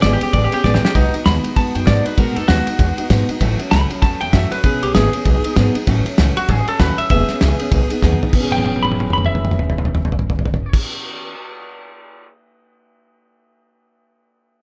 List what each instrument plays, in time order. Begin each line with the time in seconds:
0.02 upright bass G#1, steel-string acoustic guitar E3 G#3 B3 C#4 G#4, clean electric guitar D5, snare, ride
0.13 clean electric guitar G4
0.21 steel-string acoustic guitar B3 C#4 G#4, clean electric guitar G4, muted upright bass stroke, ride
0.33 upright bass A1, steel-string acoustic guitar G#3 B3 C#4 G#4, clean electric guitar D5, kick, ride
0.44 clean electric guitar G4
0.51 steel-string acoustic guitar B3 C#4 G#4, clean electric guitar G4, muted upright bass stroke, ride
0.64 upright bass A1, steel-string acoustic guitar E3 G#3 B3 C#4 G#4, clean electric guitar D5, kick, snare
0.74 clean electric guitar G4, snare
0.82 steel-string acoustic guitar B3 C#4 G#4, clean electric guitar G4, muted upright bass stroke, snare
0.94 upright bass B1, steel-string acoustic guitar B2 G#3 B3 D#4 F#4, clean electric guitar D#4, kick, ride
1.13 steel-string acoustic guitar B3 D#4 F#4, muted upright bass stroke, ride
1.26 upright bass D#2, steel-string acoustic guitar B2 G#3 B3 D#4 F#4, clean electric guitar B5, snare, ride
1.43 steel-string acoustic guitar B3 D#4 F#4, muted upright bass stroke, ride
1.56 upright bass F#2, steel-string acoustic guitar G#3 B3 D#4 F#4, clean electric guitar A5, kick, snare, ride
1.74 upright bass F#2, steel-string acoustic guitar B3 D#4 F#4, clean electric guitar G5, ride
1.86 upright bass G#2, steel-string acoustic guitar B2 G#3 B3 D#4 F#4, clean electric guitar D5, kick, snare, ride
2.05 steel-string acoustic guitar B3 D#4 F#4, clean electric guitar B4, muted upright bass stroke, ride
2.17 upright bass A2, steel-string acoustic guitar B2 G#3 B3 D#4 F#4, clean electric guitar A#4, kick, ride
2.36 upright bass F#2, steel-string acoustic guitar B3 D#4 F#4, clean electric guitar A4, ride
2.48 upright bass D#2, steel-string acoustic guitar B2 G#3 B3 D#4 F#4, clean electric guitar F#4, snare, ride
2.67 steel-string acoustic guitar B3 D#4 F#4, muted upright bass stroke, ride
2.79 upright bass E2, steel-string acoustic guitar G#3 B3 D#4 F#4, kick, snare, ride
2.98 steel-string acoustic guitar B3 D#4 F#4, muted upright bass stroke, ride
3.10 upright bass G#2, steel-string acoustic guitar B2 G#3 B3 D#4 F#4, kick, snare, ride
3.29 steel-string acoustic guitar B3 D#4 F#4, muted upright bass stroke, ride
3.40 upright bass A1, steel-string acoustic guitar A2 E3 F#3 A3 C#4 F#4, kick, ride
3.59 steel-string acoustic guitar F#3 A3 C#4 F#4, muted upright bass stroke, ride
3.71 upright bass C#2, steel-string acoustic guitar A2 E3 F#3 A3 C#4 F#4, clean electric guitar B5, snare, ride
3.90 steel-string acoustic guitar F#3 A3 C#4 F#4, muted upright bass stroke, ride
4.02 upright bass E2, steel-string acoustic guitar F#3 A3 C#4 F#4, clean electric guitar A5, kick, snare, ride
4.20 upright bass E2, steel-string acoustic guitar F#3 A3 C#4 F#4, clean electric guitar G5, ride
4.33 upright bass F#2, steel-string acoustic guitar A2 E3 F#3 A3 C#4 F#4, clean electric guitar E5, kick, snare, ride
4.51 steel-string acoustic guitar F#3 A3 C#4 F#4, clean electric guitar B4, muted upright bass stroke, ride
4.64 upright bass E1, steel-string acoustic guitar E3 B3 C#4 G#4, clean electric guitar B4, kick, ride
4.82 upright bass B1, steel-string acoustic guitar B3 C#4 G#4, clean electric guitar G4, ride
4.94 upright bass G#1, steel-string acoustic guitar E3 B3 C#4 G#4, clean electric guitar G#4, snare, ride
5.12 steel-string acoustic guitar B3 C#4 G#4, muted upright bass stroke, ride
5.24 upright bass B1, steel-string acoustic guitar F#3 B3 D#4 G#4, kick, ride
5.44 steel-string acoustic guitar B3 D#4 G#4, muted upright bass stroke, ride
5.56 upright bass G#2, steel-string acoustic guitar B2 F#3 B3 D#4 G#4, kick, snare, ride
5.74 steel-string acoustic guitar B3 D#4 G#4, muted upright bass stroke, ride
5.86 upright bass A1, steel-string acoustic guitar A2 E3 F#3 A3 C#4 F#4, kick, ride
6.05 steel-string acoustic guitar F#3 A3 C#4 F#4, muted upright bass stroke, ride
6.18 upright bass C#2, steel-string acoustic guitar A2 E3 F#3 A3 C#4 F#4, snare, ride
6.36 steel-string acoustic guitar F#3 A3 F#4, clean electric guitar F#4, muted upright bass stroke, ride
6.49 upright bass A1, steel-string acoustic guitar F#3 A3 C#4 F#4, clean electric guitar G#4, kick, ride
6.67 steel-string acoustic guitar F#3 A3 C#4 F#4, clean electric guitar A4, muted upright bass stroke, ride
6.79 upright bass D#2, steel-string acoustic guitar A2 E3 F#3 A3 C#4 F#4, clean electric guitar B4, kick, snare, ride
6.98 steel-string acoustic guitar F#3 A3 C#4, clean electric guitar E5, muted upright bass stroke, ride
7.10 upright bass E1, steel-string acoustic guitar E3 B3 C#4 G#4, clean electric guitar E5, kick, ride
7.28 steel-string acoustic guitar B3 C#4 G#4, muted upright bass stroke, snare, ride
7.40 upright bass C#2, steel-string acoustic guitar E3 B3 C#4 G#4, snare, ride
7.59 steel-string acoustic guitar B3 C#4 G#4, muted upright bass stroke, ride
7.71 upright bass B1, steel-string acoustic guitar F#3 B3 D#4 G#4, kick, ride
7.89 steel-string acoustic guitar B3 D#4 G#4, muted upright bass stroke, ride
8.02 upright bass D#2, steel-string acoustic guitar B2 F#3 B3 D#4 G#4, kick, snare
8.13 mid tom
8.21 steel-string acoustic guitar B3 D#4 G#4, muted upright bass stroke, floor tom
8.29 steel-string acoustic guitar E3, crash
8.33 upright bass E1, steel-string acoustic guitar B3, kick
8.39 steel-string acoustic guitar C#4 G#4
8.51 clean electric guitar G5, high tom
8.58 high tom
8.65 clean electric guitar G5, high tom
8.76 high tom
8.83 clean electric guitar B5, high tom
8.92 high tom
9.00 high tom
9.10 clean electric guitar B5, mid tom
9.18 mid tom
9.25 clean electric guitar E5, mid tom
9.35 mid tom
9.45 mid tom
9.51 mid tom
9.59 mid tom
9.70 mid tom
9.78 mid tom
9.85 mid tom
9.95 mid tom
10.05 mid tom
10.12 floor tom
10.19 floor tom
10.30 floor tom
10.39 floor tom
10.45 floor tom
10.54 floor tom
10.73 kick, crash